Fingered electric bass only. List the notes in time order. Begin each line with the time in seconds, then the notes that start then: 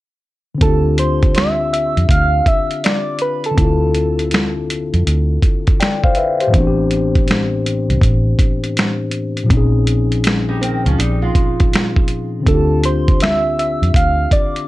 0.61 D2
1.97 F2
2.09 D2
3.58 D2
4.94 F2
5.07 D2
6.54 A1
7.90 C2
8.02 A1
9.51 A#1
10.86 C#2
10.99 A#1
12.47 D2
13.82 F2
13.94 D2